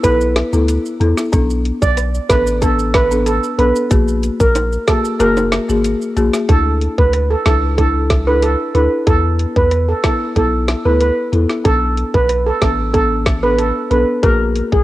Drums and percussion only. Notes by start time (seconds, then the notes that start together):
0.04 kick, closed hi-hat, maracas
0.21 maracas
0.36 snare, closed hi-hat
0.53 maracas
0.68 closed hi-hat, maracas
0.85 maracas
1.01 closed hi-hat
1.17 snare, maracas
1.33 kick, closed hi-hat, maracas
1.50 maracas
1.65 closed hi-hat
1.82 kick, maracas
1.97 cross-stick, closed hi-hat, maracas
2.14 maracas
2.30 kick, snare, closed hi-hat, maracas
2.47 maracas
2.62 kick, closed hi-hat, maracas
2.79 maracas
2.94 kick, snare, closed hi-hat
3.11 maracas
3.26 closed hi-hat, maracas
3.44 maracas
3.59 closed hi-hat
3.76 maracas
3.91 kick, closed hi-hat, maracas
4.08 maracas
4.23 closed hi-hat, maracas
4.40 kick, maracas
4.55 closed hi-hat, high timbale, maracas
4.72 maracas
4.88 kick, snare, closed hi-hat, maracas
5.05 maracas
5.20 closed hi-hat, maracas
5.37 high timbale, maracas
5.52 snare, closed hi-hat, maracas
5.69 maracas
5.84 closed hi-hat, maracas
6.02 maracas
6.17 closed hi-hat, maracas
6.33 snare, maracas
6.49 kick, closed hi-hat
6.81 closed hi-hat
6.98 kick
7.13 cross-stick, closed hi-hat
7.46 kick, snare, closed hi-hat
7.78 kick, closed hi-hat
8.10 kick, snare, closed hi-hat
8.42 closed hi-hat
8.75 closed hi-hat
9.07 kick, closed hi-hat
9.39 closed hi-hat
9.56 kick
9.71 cross-stick, closed hi-hat
10.04 kick, snare, closed hi-hat
10.36 kick, closed hi-hat
10.68 snare, closed hi-hat
11.01 closed hi-hat
11.33 closed hi-hat
11.49 snare
11.65 kick, closed hi-hat
11.97 closed hi-hat
12.14 kick
12.29 cross-stick, closed hi-hat
12.62 kick, snare, closed hi-hat
12.94 kick, closed hi-hat
13.26 kick, snare, closed hi-hat
13.59 closed hi-hat
13.91 closed hi-hat
14.23 kick, closed hi-hat
14.56 closed hi-hat
14.72 kick